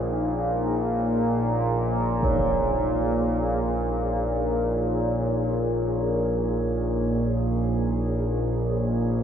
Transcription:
Already playing: synth drone A#1 A#2, analog synth pad A#3 D#4 G#4 C#5
2.23 singing bowl C#5, impact

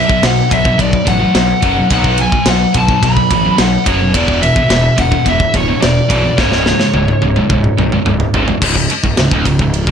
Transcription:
Already playing: lead electric guitar E5
0.09 distorted electric guitar B2 F#3, kick
0.23 picked electric bass B1, distorted electric guitar B2 F#3, lead electric guitar F#5, snare, ride
0.51 picked electric bass B1, distorted electric guitar B2 F#3, lead electric guitar E5, kick, ride
0.65 distorted electric guitar B2 F#3, kick
0.78 picked electric bass B1, distorted electric guitar B2 F#3, lead electric guitar D5, kick, ride
0.93 kick
1.06 picked electric bass A1, distorted electric guitar B2 F#3, lead electric guitar F#5, kick, ride
1.20 distorted electric guitar B2 F#3
1.34 picked electric bass B1, distorted electric guitar B2 F#3, snare, ride
1.62 picked electric bass F#1, distorted electric guitar B2 F#3 B3, kick, ride
1.77 distorted electric guitar B2 F#3
1.90 picked electric bass B1, distorted electric guitar B2 F#3 B3, lead electric guitar F#5, kick, ride
2.04 kick
2.18 distorted electric guitar B2 F#3, lead electric guitar G#5, ride
2.32 distorted electric guitar B2 F#3, kick
2.46 picked electric bass B1, distorted electric guitar B2 F#3, lead electric guitar F#5, snare, ride
2.74 picked electric bass B1, distorted electric guitar B2 F#3, lead electric guitar A5, kick, ride
2.89 distorted electric guitar B2 F#3, kick
3.03 picked electric bass B1, distorted electric guitar B2 F#3, lead electric guitar B5, kick, ride
3.17 kick
3.31 picked electric bass A1, distorted electric guitar B2 F#3, kick, ride
3.45 distorted electric guitar B2 F#3
3.58 picked electric bass B1, distorted electric guitar B2 F#3, lead electric guitar F#5, snare, ride
3.86 picked electric bass F#1, distorted electric guitar B2 F#3 B3, lead electric guitar C#5, kick, ride
4.01 distorted electric guitar B2 F#3
4.14 picked electric bass E1, distorted electric guitar E2 B2 E3, lead electric guitar D5, kick, ride
4.28 kick
4.42 distorted electric guitar E2 B2, lead electric guitar E5, ride
4.56 distorted electric guitar E2 B2, kick
4.69 picked electric bass E1, distorted electric guitar E2 B2, snare, ride
4.97 picked electric bass E1, distorted electric guitar E2 B2, lead electric guitar F#5, kick, ride
5.11 distorted electric guitar E2 B2, kick
5.25 picked electric bass E1, distorted electric guitar E2 B2, kick, ride
5.29 lead electric guitar E5
5.40 kick
5.54 picked electric bass D1, distorted electric guitar E2 B2, lead electric guitar C#5, kick, ride
5.68 distorted electric guitar E2 B2
5.80 picked electric bass E1, distorted electric guitar E2 B2, lead electric guitar D5, snare, ride
6.09 picked electric bass B1, distorted electric guitar E2 B2 E3, kick, ride
6.24 distorted electric guitar E2 B2
6.37 picked electric bass C#1, distorted electric guitar C#2 G#2 C#3, lead electric guitar C#5, kick, snare
6.52 snare
6.65 distorted electric guitar C#2 G#2, snare
6.79 distorted electric guitar C#2 G#2, snare
6.94 picked electric bass C#1, distorted electric guitar C#2 G#2, high tom
7.08 high tom
7.22 picked electric bass C#1, distorted electric guitar C#2 G#2, high tom
7.36 distorted electric guitar C#2 G#2, mid tom
7.49 picked electric bass C#1, distorted electric guitar C#2 G#2, kick, mid tom
7.64 mid tom
7.78 picked electric bass B1, distorted electric guitar C#2 G#2, mid tom
7.92 distorted electric guitar C#2 G#2, mid tom
8.06 picked electric bass C#1, distorted electric guitar C#2 G#2, mid tom
8.20 floor tom
8.34 picked electric bass G#1, distorted electric guitar C#2 G#2 C#3, floor tom
8.48 distorted electric guitar C#2 G#2, floor tom
8.62 picked electric bass C#1, distorted electric guitar C#2, kick, crash
8.76 picked electric bass C#1, distorted electric guitar C#2, kick
8.90 muted picked electric bass stroke, muted distorted electric guitar stroke, ride
9.04 picked electric bass C#1, distorted electric guitar C#2, kick
9.17 picked electric bass C#1, distorted electric guitar C#2, snare, ride
9.31 picked electric bass D1, distorted electric guitar D2, kick
9.45 picked electric bass C#1, distorted electric guitar C#2, kick, ride
9.59 picked electric bass C#1, distorted electric guitar C#2, kick
9.74 ride
9.87 picked electric bass C#1, kick

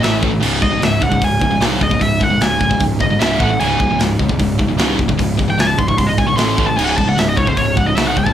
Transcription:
0.00 picked electric bass A1, distorted electric guitar A2 E3 A3, lead electric guitar E5, snare, open hi-hat
0.21 picked electric bass A1, distorted electric guitar A2 E3 A3, kick
0.31 distorted electric guitar A2 E3
0.41 picked electric bass C#1, distorted electric guitar C#2 G#2 C#3, crash
0.60 picked electric bass C#1, distorted electric guitar C#2 G#2, lead electric guitar D#5, kick
0.71 distorted electric guitar C#2 G#2
0.81 picked electric bass C#1, distorted electric guitar C#2 G#2, lead electric guitar E5, snare, open hi-hat
1.01 picked electric bass C#2, distorted electric guitar C#2 G#2, lead electric guitar F#5, kick
1.11 distorted electric guitar C#2 G#2, kick
1.21 picked electric bass C#1, distorted electric guitar C#2 G#2, lead electric guitar G#5, kick, open hi-hat
1.41 picked electric bass C#1, distorted electric guitar C#2 G#2, kick
1.51 distorted electric guitar C#2 G#2
1.60 picked electric bass C2, distorted electric guitar C#2 G#2 C#3, snare, open hi-hat
1.80 picked electric bass C#1, distorted electric guitar C#2 G#2, lead electric guitar D#5, kick
1.90 distorted electric guitar C#2 G#2, kick
1.99 picked electric bass C#1, distorted electric guitar C#2 G#2, lead electric guitar E5, kick, open hi-hat
2.20 picked electric bass C#1, distorted electric guitar C#2 G#2, lead electric guitar F#5, kick
2.30 distorted electric guitar C#2 G#2
2.41 picked electric bass C#1, distorted electric guitar C#2 G#2, lead electric guitar G#5, snare, open hi-hat
2.59 picked electric bass C#1, distorted electric guitar C#2 G#2, kick
2.69 distorted electric guitar C#2 G#2, kick
2.80 picked electric bass C#1, distorted electric guitar C#2 G#2, kick, open hi-hat
3.00 picked electric bass G#1, distorted electric guitar C#2 G#2, lead electric guitar D#5, kick
3.10 distorted electric guitar C#2 G#2
3.20 picked electric bass C#1, distorted electric guitar C#2 G#2 C#3, lead electric guitar E5, snare, open hi-hat
3.39 picked electric bass A1, distorted electric guitar A2 E3 A3, lead electric guitar F#5, kick
3.50 distorted electric guitar A2 E3
3.59 picked electric bass C#1, distorted electric guitar C#2 G#2 C#3, lead electric guitar G#5, crash
3.80 picked electric bass C#1, distorted electric guitar C#2 G#2, kick
3.91 distorted electric guitar C#2 G#2
3.99 picked electric bass C#1, distorted electric guitar C#2 G#2, snare, open hi-hat
4.19 picked electric bass C#2, distorted electric guitar C#2 G#2, kick
4.29 distorted electric guitar C#2 G#2, kick
4.40 picked electric bass C#1, distorted electric guitar C#2 G#2, kick, open hi-hat
4.59 picked electric bass C#1, distorted electric guitar C#2 G#2, kick
4.68 distorted electric guitar C#2 G#2
4.77 picked electric bass C2, distorted electric guitar C#2 G#2 C#3, snare, open hi-hat
4.98 picked electric bass C#1, distorted electric guitar C#2 G#2, kick
5.08 distorted electric guitar C#2 G#2, kick
5.18 picked electric bass C#1, distorted electric guitar C#2 G#2, kick, open hi-hat
5.37 picked electric bass C#1, distorted electric guitar C#2 G#2, kick
5.48 distorted electric guitar C#2 G#2, lead electric guitar G5
5.57 picked electric bass C#1, distorted electric guitar C#2 G#2, lead electric guitar G#5, snare, open hi-hat
5.68 lead electric guitar A5
5.78 picked electric bass C#1, distorted electric guitar C#2 G#2, lead electric guitar C6, kick
5.88 distorted electric guitar C#2 G#2, lead electric guitar C#6, kick
5.98 picked electric bass C#1, distorted electric guitar C#2 G#2, lead electric guitar C6, kick, open hi-hat
6.07 lead electric guitar D#5
6.18 picked electric bass C2, distorted electric guitar C#2 G#2, lead electric guitar G#5, kick
6.27 distorted electric guitar C#2 G#2, lead electric guitar C#6
6.36 picked electric bass A1, distorted electric guitar A2 E3 A3, lead electric guitar C6, snare, open hi-hat
6.57 picked electric bass A1, distorted electric guitar A2 E3 A3, kick
6.67 distorted electric guitar A2 E3, lead electric guitar A5
6.77 picked electric bass C#1, distorted electric guitar C#2 G#2 C#3, lead electric guitar G#5, crash
6.84 lead electric guitar F#5
6.89 lead electric guitar G#5
6.97 picked electric bass C#1, distorted electric guitar C#2 G#2, lead electric guitar A5, kick
7.08 distorted electric guitar C#2 G#2, lead electric guitar F#5
7.18 picked electric bass C#1, distorted electric guitar C#2 G#2, lead electric guitar E5, snare, open hi-hat
7.29 lead electric guitar D#5
7.36 picked electric bass C#2, distorted electric guitar C#2 G#2, lead electric guitar C#5, kick
7.46 distorted electric guitar C#2 G#2, lead electric guitar C5, kick
7.57 picked electric bass C#1, distorted electric guitar C#2 G#2, lead electric guitar C#5, kick, open hi-hat
7.77 picked electric bass C#1, distorted electric guitar C#2 G#2, lead electric guitar F#5, kick
7.87 distorted electric guitar C#2 G#2, lead electric guitar D#5
7.96 picked electric bass C2, distorted electric guitar C#2 G#2 C#3, lead electric guitar E5, snare, open hi-hat
8.08 lead electric guitar F#5
8.16 picked electric bass C#1, distorted electric guitar C#2 G#2, lead electric guitar G5, kick
8.26 distorted electric guitar C#2 G#2, lead electric guitar A5, kick

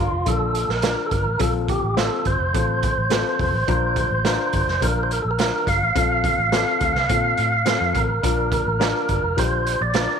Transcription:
Already playing: fingered electric bass G1, tonewheel organ F4
0.12 fingered electric bass F1
0.26 fingered electric bass A#1, upright piano A#3 D4 F4, tonewheel organ A4, kick, closed hi-hat
0.55 closed hi-hat
0.69 fingered electric bass A#1, tonewheel organ A#4, snare
0.82 upright piano D4 F4 A#4, snare, closed hi-hat
1.06 tonewheel organ A4
1.11 fingered electric bass G1, tonewheel organ A#4, kick, closed hi-hat
1.26 fingered electric bass A1
1.39 fingered electric bass A#1, upright piano A#2 C4 F4 A4, tonewheel organ A4, kick, closed hi-hat
1.68 tonewheel organ G4, kick, closed hi-hat
1.83 fingered electric bass A1
1.97 upright piano C4 F4 C5, tonewheel organ A4, snare, closed hi-hat
2.25 fingered electric bass G1, tonewheel organ C5, kick, closed hi-hat
2.40 fingered electric bass F1
2.54 fingered electric bass A1, upright piano C4 F4 A4, kick, closed hi-hat
2.83 kick, closed hi-hat
2.97 fingered electric bass A1
3.10 upright piano C4 F4 A4, snare, closed hi-hat
3.39 fingered electric bass F1, tonewheel organ C5, kick, open hi-hat
3.54 fingered electric bass A1
3.67 fingered electric bass A#1, upright piano A#2 D4 F4 A#4, kick, closed hi-hat
3.96 kick, closed hi-hat
4.11 fingered electric bass A1
4.25 upright piano D4 F4 A#4, snare, closed hi-hat
4.53 fingered electric bass G1, kick, closed hi-hat
4.67 fingered electric bass F1, snare
4.81 fingered electric bass A#1, upright piano D4 F4 A#4, tonewheel organ A#4, kick, closed hi-hat
5.03 tonewheel organ C5
5.11 tonewheel organ A#4, closed hi-hat
5.22 fingered electric bass A#1, tonewheel organ A4
5.31 tonewheel organ A#4
5.39 upright piano D4 F4 A#4, tonewheel organ A#4, snare, closed hi-hat
5.67 fingered electric bass G1, tonewheel organ F5, kick, closed hi-hat
5.82 fingered electric bass A1
5.95 fingered electric bass A#1, upright piano A#2 C4 F4 A4, kick, closed hi-hat
6.24 kick, closed hi-hat
6.38 fingered electric bass A1
6.52 upright piano C4 F4 A4, snare, closed hi-hat
6.81 fingered electric bass D2, kick, closed hi-hat
6.95 fingered electric bass C2, snare
7.09 fingered electric bass A#2, upright piano C4 F4 A4, kick, closed hi-hat
7.37 fingered electric bass A2, closed hi-hat
7.66 upright piano C4 F4 A4, snare, closed hi-hat
7.81 fingered electric bass F2
7.94 fingered electric bass A1, tonewheel organ A#4, kick, closed hi-hat
8.23 fingered electric bass A#1, upright piano A#2 D4 F4 A#4, kick, closed hi-hat
8.52 kick, closed hi-hat
8.66 fingered electric bass A1
8.80 upright piano D4 F4 A#4, snare, closed hi-hat
9.09 fingered electric bass G1, kick, closed hi-hat
9.23 fingered electric bass F1
9.37 fingered electric bass A#1, upright piano D4 F4 G4, tonewheel organ C5, kick, closed hi-hat
9.67 closed hi-hat
9.81 fingered electric bass A#1, tonewheel organ D5
9.94 upright piano D4 F4 A#4, snare, closed hi-hat

